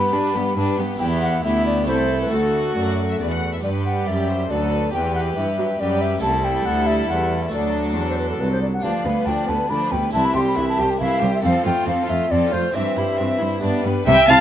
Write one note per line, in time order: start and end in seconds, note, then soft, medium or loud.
0.00 0.12 G2 soft
0.00 0.13 B3 soft
0.00 0.14 B3 soft
0.00 0.94 B3 soft
0.00 0.95 D4 soft
0.00 0.14 G4 soft
0.00 0.95 G4 soft
0.00 0.77 B5 medium
0.13 0.33 G2 soft
0.13 0.21 G2 medium
0.13 0.35 G3 soft
0.13 0.36 D4 soft
0.13 0.36 B4 soft
0.35 0.43 G2 soft
0.35 0.55 G2 soft
0.35 0.57 B3 soft
0.35 0.57 G4 soft
0.56 0.65 G2 soft
0.56 0.77 G2 soft
0.56 0.77 G3 soft
0.56 0.77 D4 soft
0.56 0.77 B4 soft
0.78 0.98 G2 soft
0.78 0.87 G2 medium
0.78 0.99 B3 soft
0.78 1.01 B3 soft
0.78 0.99 G4 soft
0.95 1.40 B3 soft
0.95 1.83 E4 soft
0.95 1.84 G4 soft
1.00 1.40 E2 soft
1.00 1.41 E2 medium
1.00 1.41 B3 soft
1.00 1.41 E4 soft
1.00 1.41 G4 medium
1.00 1.06 G5 medium
1.22 1.43 F#5 medium
1.44 1.83 D2 soft
1.44 1.87 D2 soft
1.44 1.87 B3 soft
1.44 1.86 E4 soft
1.44 1.87 G4 soft
1.44 1.65 E5 medium
1.66 1.87 D5 medium
1.83 2.26 A3 soft
1.83 2.28 E4 soft
1.83 2.29 A4 soft
1.87 2.31 C2 soft
1.87 2.27 C2 soft
1.87 2.30 A3 soft
1.87 2.31 E4 soft
1.87 2.30 A4 soft
1.87 2.20 C5 medium
2.22 2.31 B4 medium
2.27 3.15 A3 soft
2.27 3.58 F#4 soft
2.27 3.59 A4 soft
2.31 2.75 D2 medium
2.31 2.72 D2 soft
2.31 3.41 A3 soft
2.31 3.43 F#4 soft
2.31 2.70 A4 soft
2.31 3.18 A4 medium
2.75 3.16 F#2 soft
2.75 3.19 F#2 soft
2.75 3.06 D5 soft
3.09 3.20 E5 soft
3.19 3.59 E2 soft
3.19 3.63 E2 soft
3.19 3.30 D5 medium
3.31 3.52 F#5 medium
3.53 3.57 E5 soft
3.61 4.04 G2 soft
3.61 4.03 G2 soft
3.61 4.46 G3 soft
3.61 4.88 G4 soft
3.61 4.46 G4 soft
3.61 4.89 B4 soft
3.61 4.03 B4 soft
3.61 3.69 D5 medium
3.85 4.09 F#5 medium
4.06 4.46 F#2 soft
4.06 4.49 F#2 soft
4.06 4.28 D5 soft
4.06 4.52 E5 medium
4.29 4.50 C5 soft
4.50 4.93 D2 soft
4.50 4.90 D2 soft
4.50 4.94 F#3 soft
4.50 4.93 A4 soft
4.50 4.92 B4 soft
4.50 4.93 D5 medium
4.91 5.36 E2 medium
4.91 5.33 E2 soft
4.91 5.35 E3 soft
4.91 6.18 G4 soft
4.91 5.78 G4 soft
4.91 6.19 B4 soft
4.91 5.78 B4 soft
4.91 5.14 G5 medium
5.15 5.21 F#5 medium
5.36 5.79 G2 soft
5.36 5.76 G2 soft
5.36 5.44 E3 soft
5.36 5.82 E5 medium
5.58 5.66 F#3 soft
5.79 6.22 F#2 medium
5.79 6.19 F#2 soft
5.79 6.22 G3 soft
5.79 6.22 G4 soft
5.79 6.22 B4 soft
5.79 6.03 D5 medium
6.01 6.22 E5 medium
6.18 7.47 A3 soft
6.18 7.48 E4 soft
6.18 7.47 G4 soft
6.18 7.48 A4 soft
6.22 6.62 C2 soft
6.22 6.63 C2 medium
6.22 7.49 G3 soft
6.22 7.49 A4 medium
6.22 6.46 A5 medium
6.44 6.67 G5 medium
6.66 7.08 D2 medium
6.66 7.06 D2 soft
6.66 6.88 F#5 medium
6.87 7.08 E5 medium
7.09 7.52 E2 medium
7.09 7.49 E2 soft
7.09 7.41 F#5 medium
7.43 7.52 E5 medium
7.48 7.93 A3 soft
7.48 8.78 F#4 soft
7.48 8.79 A4 soft
7.52 7.92 D2 soft
7.52 7.96 D2 medium
7.52 8.62 F#3 soft
7.52 8.64 D4 soft
7.52 8.61 A4 soft
7.52 7.84 D5 medium
7.96 8.40 E2 soft
7.96 8.36 E2 soft
8.09 8.18 C5 medium
8.18 8.29 B4 medium
8.30 8.42 A4 soft
8.40 8.83 C2 soft
8.40 8.80 C2 soft
8.40 8.51 B4 medium
8.52 8.61 C5 medium
8.62 8.67 D5 medium
8.73 8.84 F#5 medium
8.80 8.92 D2 medium
8.80 10.08 D4 soft
8.80 9.04 D4 soft
8.80 10.09 G4 soft
8.80 10.10 B4 soft
8.80 9.28 F5 medium
8.84 9.04 D2 soft
8.84 9.04 F3 soft
8.84 9.04 D5 soft
9.05 9.13 D2 soft
9.05 9.25 D2 soft
9.05 9.28 G3 soft
9.05 9.27 B3 soft
9.05 9.27 B4 soft
9.27 9.35 D2 soft
9.27 9.47 D2 soft
9.27 9.49 F3 soft
9.27 9.49 D4 soft
9.27 9.49 D5 soft
9.27 9.50 G5 medium
9.48 9.69 D2 soft
9.48 9.57 D2 soft
9.48 9.71 G3 soft
9.48 9.70 B3 soft
9.48 9.71 B4 soft
9.48 9.71 A5 medium
9.70 9.79 D2 soft
9.70 9.90 D2 soft
9.70 9.91 F3 soft
9.70 9.91 D4 soft
9.70 9.91 D5 soft
9.70 9.93 B5 medium
9.91 10.12 D2 soft
9.91 10.01 D2 soft
9.91 10.14 G3 soft
9.91 10.14 B3 soft
9.91 10.14 B4 soft
9.91 10.12 G5 medium
10.09 11.38 E4 soft
10.09 10.34 E4 soft
10.09 11.38 G4 soft
10.09 11.39 C5 soft
10.09 10.26 A5 medium
10.14 10.33 C2 soft
10.14 10.22 C2 medium
10.14 10.34 E3 soft
10.14 10.34 E5 soft
10.25 10.34 B5 medium
10.35 10.44 C2 soft
10.35 10.55 C2 soft
10.35 10.58 G3 soft
10.35 10.57 G4 soft
10.35 10.57 C5 soft
10.35 10.40 C6 medium
10.47 10.68 B5 medium
10.57 10.77 C2 soft
10.57 10.65 C2 soft
10.57 10.79 E3 soft
10.57 10.79 E4 soft
10.57 10.79 E5 soft
10.69 10.92 A5 medium
10.78 10.87 C2 soft
10.78 10.99 C2 soft
10.78 11.01 G3 soft
10.78 11.00 G4 soft
10.78 11.00 C5 soft
10.90 11.00 G5 medium
10.99 11.09 C2 medium
10.99 11.21 C2 soft
10.99 11.21 E3 soft
10.99 11.21 E4 soft
10.99 11.20 E5 soft
10.99 11.32 F5 medium
11.21 11.30 C2 medium
11.21 11.42 C2 soft
11.21 11.44 G3 soft
11.21 11.44 G4 soft
11.21 11.44 C5 soft
11.35 11.43 E5 medium
11.40 11.52 F2 medium
11.40 11.64 F3 soft
11.40 12.69 C4 soft
11.40 11.64 C4 soft
11.40 12.70 A4 soft
11.40 11.64 A4 soft
11.40 12.70 C5 soft
11.40 11.65 F5 medium
11.45 11.64 F2 soft
11.65 11.73 F2 medium
11.65 11.86 F2 soft
11.65 11.87 A3 soft
11.65 11.87 F4 soft
11.65 11.87 C5 soft
11.65 11.87 G5 medium
11.87 11.95 F2 medium
11.87 12.08 F2 soft
11.87 12.09 F3 soft
11.87 12.09 C4 soft
11.87 12.09 A4 soft
11.87 12.11 F5 medium
12.08 12.17 F2 medium
12.08 12.30 F2 medium
12.08 12.31 A3 soft
12.08 12.30 F4 soft
12.08 12.31 C5 soft
12.08 12.32 E5 medium
12.30 12.39 F2 medium
12.30 12.51 F2 medium
12.30 12.51 F3 soft
12.30 12.51 C4 soft
12.30 12.51 A4 soft
12.30 12.54 D5 medium
12.52 12.73 F2 soft
12.52 12.61 F2 medium
12.52 12.75 A3 soft
12.52 12.74 F4 soft
12.52 12.74 C5 soft
12.52 12.77 C5 medium
12.71 12.95 E3 soft
12.71 13.58 C4 soft
12.71 12.95 C4 soft
12.71 13.59 G4 soft
12.71 13.60 C5 soft
12.71 12.95 E5 soft
12.75 12.83 G2 medium
12.75 12.95 G2 soft
12.75 13.85 E5 medium
12.96 13.05 G2 soft
12.96 13.17 G2 soft
12.96 13.19 G3 soft
12.96 13.19 E4 soft
12.96 13.19 C5 soft
13.18 13.27 G2 medium
13.18 13.39 G2 soft
13.18 13.41 E3 soft
13.18 13.41 C4 soft
13.18 13.41 E5 soft
13.40 13.49 G2 soft
13.40 13.61 G2 soft
13.40 13.63 G3 soft
13.40 13.63 E4 soft
13.40 13.63 C5 soft
13.59 14.03 B3 soft
13.59 14.04 G4 soft
13.59 14.05 D5 soft
13.59 13.83 D5 soft
13.63 13.71 G2 soft
13.63 13.83 G2 soft
13.63 13.84 B3 soft
13.63 13.83 D4 soft
13.85 13.93 G2 medium
13.85 14.05 G2 soft
13.85 14.07 G3 soft
13.85 14.07 B3 soft
13.85 14.07 B4 medium
14.06 14.15 C2 medium
14.06 14.15 C3 medium
14.06 14.27 C3 medium
14.06 14.15 E4 medium
14.06 14.27 E5 medium
14.06 14.30 E5 medium
14.06 14.27 G5 loud
14.28 14.37 C2 medium
14.28 14.36 C3 medium
14.28 14.41 C3 medium
14.28 14.37 E4 medium
14.28 14.41 F5 medium
14.28 14.41 A5 loud